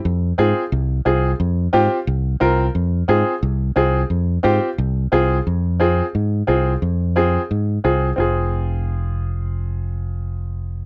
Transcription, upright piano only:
\new Staff \with { instrumentName = "Upright piano" } { \time 4/4 \key f \minor \tempo 4 = 177 r4 <c' f' aes'>8 r4. <c' f' aes'>8 r8 | r4 <c' f' g'>8 r4. <c' f' bes'>8 r8 | r4 <c' f' aes'>8 r4. <c' f' aes'>8 r8 | r4 <c' f' g'>8 r4. <c' f' aes'>8 r8 |
r4 <c' f' aes'>8 r4. <c' f' aes'>8 r8 | r4 <c' f' aes'>8 r4. <c' f' aes'>8 r8 | <c' f' aes'>1~ | <c' f' aes'>1 | }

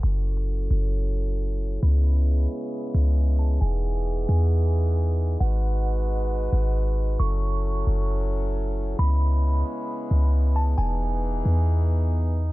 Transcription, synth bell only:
\new Staff \with { instrumentName = "Synth bell" } { \time 4/4 \key fis \dorian \tempo 4 = 134 cis'''2 r2 | b''2.~ b''8 a''8 | gis''2 r2 | fis''2. r4 |
cis'''2 r2 | b''2.~ b''8 a''8 | gis''2 r2 | }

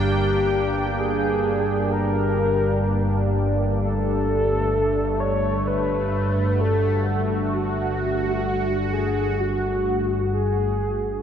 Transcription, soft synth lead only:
\new Staff \with { instrumentName = "Soft synth lead" } { \time 4/4 \tempo 4 = 64 g'4 aes'4 bes'4. r8 | a'4. cis''8 b'4 a'8. r16 | fis'4. aes'8 fis'4 aes'4 | }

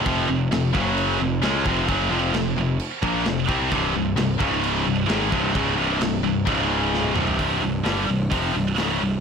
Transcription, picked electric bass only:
\new Staff \with { instrumentName = "Picked electric bass" } { \clef bass \time 4/4 \tempo 4 = 131 f,,8 f,,8 f,,8 fis,,4 f,,8 des,8 f,,8 | fis,,8 f,,8 f,,8 f,,8 r8 bes,,8 f,,8 c,8 | c,,8 c,,8 c,,8 des,,4 c,,8 aes,,8 c,,8 | des,,8 c,,8 c,,8 c,,8 des,,4. c,,8 |
c,,8 c,,8 g,,8 c,,8 f,,8 c,,8 des,,8 c,,8 | }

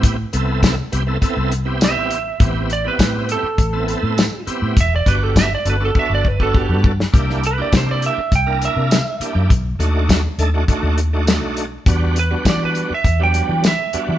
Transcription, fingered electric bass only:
\new Staff \with { instrumentName = "Fingered electric bass" } { \clef bass \time 4/4 \key e \minor \tempo 4 = 102 a,8 c,4 c,8 r16 c,4 a,,8. | a,,4 a,8. r16 a,,8. a,8 r8 a,16 | e,,8 g,,4 g,,8 r16 g,,4 g,8. | c,4 c8. r16 c,8. c8 r8 fis,16 |
b,,8 dis,4 dis,8 r16 dis,4 b,,8. | e,4 e8. r16 e,8. e8 r8 e16 | }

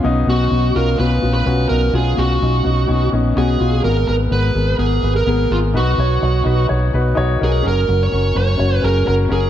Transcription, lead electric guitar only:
\new Staff \with { instrumentName = "Lead electric guitar" } { \time 4/4 \key ces \lydian \tempo 4 = 126 r8 ges'4 bes'8 ces''8. ces''8. bes'8 | aes'8 ges'2 r8 aes'4 | bes'8 bes'8 ces''4 aes'8. bes'8. f'8 | ges'2 r4. aes'8 |
bes'8. des''8. des''4 bes'8 bes'8 aes'8 | }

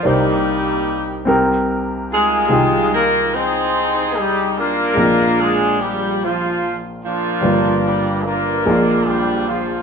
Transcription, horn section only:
\new Staff \with { instrumentName = "Horn section" } { \time 6/8 \key bes \mixolydian \tempo 4. = 49 << { <g g'>4. r4 <aes aes'>8~ | <aes aes'>8 <bes bes'>8 <c' c''>4 <g g'>8 <bes bes'>8~ | <bes bes'>8 <aes aes'>8 <g g'>8 <f f'>8 r8 <f f'>8~ | <f f'>8 <g g'>8 <bes bes'>4 <g g'>8 <f f'>8 | } \\ { <bes ees'>4. r4 <ees' f'>8~ | <ees' f'>4 <ees' aes'>4. <d' f'>8~ | <d' f'>4 r4. <bes d'>8~ | <bes d'>4 <d' f'>4. r8 | } >> }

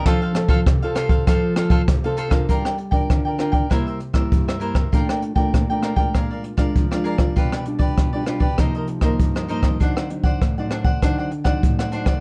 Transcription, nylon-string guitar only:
\new Staff \with { instrumentName = "Nylon-string guitar" } { \time 4/4 \key f \mixolydian \tempo 4 = 98 << { <c' f' a'>8 <c' f' a'>8 r16 <c' f' a'>8. <c' f' a'>8 <c' f' a'>8. <c' f' a'>8 <d' f' bes'>16~ | \key g \minor <d' f' bes'>8 r16 <d' f' bes'>8. <d' f' bes'>8 <g bes e'>8 r16 <g bes e'>8. <g bes e'>16 r16 | <a d' f'>8. <a d' f'>8 <a d' f'>8 <aes d' f'>4 <aes d' f'>8 <aes d' f'>8 <g d' f'>16~ | <g d' f'>8 <g d' f'>8. <g d' f'>16 <g d' f'>16 r16 <f bes ees'>8. <f bes ees'>8. <f bes ees'>8 |
<fis c' ees'>8 <fis c' ees'>8 r16 <fis c' ees'>16 <fis c' ees'>16 r16 <fis c' ees'>8 r16 <fis c' ees'>8. <fis c' ees'>8 | } \\ { f4 c4 f4 c4 | g4 d4 c4 g,4 | bes,4 bes,4 bes,4 f4 | b,4 b,4 c4 g,4 |
d4 a,4 d4 a,4 | } >> }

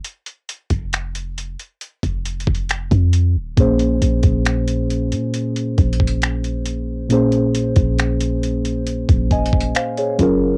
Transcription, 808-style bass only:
\new Staff \with { instrumentName = "808-style bass" } { \clef bass \time 4/4 \key bes \minor \tempo 4 = 68 r8. f,,4 r8 f,,8 f,,8 f,8 ees,,16 | bes,,8 bes,,16 bes,,4 bes,8. bes,,4.~ | bes,,8. bes,,4. bes,,8. r8 ges,,8 | }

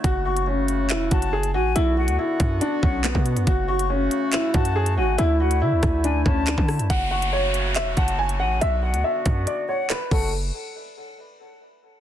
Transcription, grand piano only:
\new Staff \with { instrumentName = "Grand piano" } { \time 4/4 \key fis \minor \tempo 4 = 140 fis'8 fis'8 cis'4 e'8 fis'8 gis'8 fis'8 | e'8 fis'8 e'4 d'8 cis'8 b4 | fis'8 fis'8 cis'4 e'8 fis'8 gis'8 fis'8 | e'8 fis'8 e'4 d'8 cis'8 d'8 r8 |
fis''8 fis''8 cis''4 e''8 fis''8 gis''8 fis''8 | e''8 fis''8 e''4 d''8 cis''8 b'8 a'8 | r1 | }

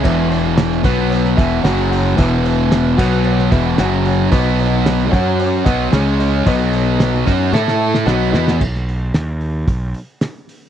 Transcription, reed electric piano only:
\new Staff \with { instrumentName = "Reed electric piano" } { \time 4/4 \key b \mixolydian \tempo 4 = 112 << { r1 | r2 r8. fis''16 gis''4 | r1 | r2 r8 e''8 fis''4 |
\key b \major r1 | } \\ { <e' b' e''>4. <fis' b' fis''>4 <e' b' e''>8 <fis' cis'' fis''>8 <fis' cis'' fis''>8 | <e' b' e''>4. <fis' b' fis''>4 <e' b' e''>8 <fis' cis'' fis''>8 <fis' cis'' fis''>8 | <fis' b' dis''>4. <fis' cis'' fis''>4 <b' dis'' fis''>8 <gis' cis'' gis''>8 <gis' cis'' dis''>8 | <fis' b' dis''>4. r8 <e' a' e''>4 <fis' b' dis''>8 <fis' b' dis''>8 |
r1 | } >> }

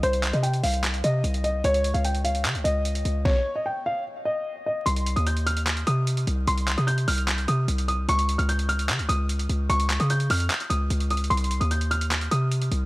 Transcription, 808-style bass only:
\new Staff \with { instrumentName = "808-style bass" } { \clef bass \time 4/4 \key c \phrygian \tempo 4 = 149 c,8. c8. c,4 c8 c,4 | des,8. des,4~ des,16 des16 des,16 des,4 des,8 | r1 | c,8. ees,4.~ ees,16 c4 c,8 |
c,8. c8. c,4 c8 c,4 | des,8. des,4~ des,16 des16 des,16 des,4 des,8 | des,8. des8. f,8 r8 des,8 des,4 | c,8. ees,4.~ ees,16 c4 c,8 | }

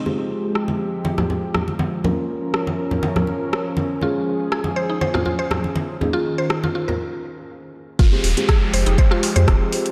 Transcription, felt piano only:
\new Staff \with { instrumentName = "Felt piano" } { \time 4/4 \key f \minor \tempo 4 = 121 <aes c' f' g'>1 | <bes des' f' bes'>1 | <aes des' f' aes'>1 | <bes des' ees' aes'>1 |
r16 <aes c' f' g'>16 r16 <aes c' f' g'>16 r4. r16 <aes c' f' g'>4~ <aes c' f' g'>16 | }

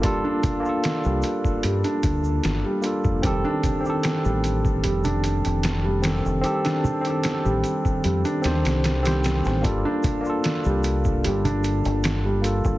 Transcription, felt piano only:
\new Staff \with { instrumentName = "Felt piano" } { \clef bass \time 4/4 \key g \minor \tempo 4 = 75 g16 d'4 g8. g16 d'4 g8. | g16 d'4 g8. g16 d'4 g8. | g16 d'4 g8. g16 d'4 g8. | g16 d'4 g8. g16 d'4 g8. | }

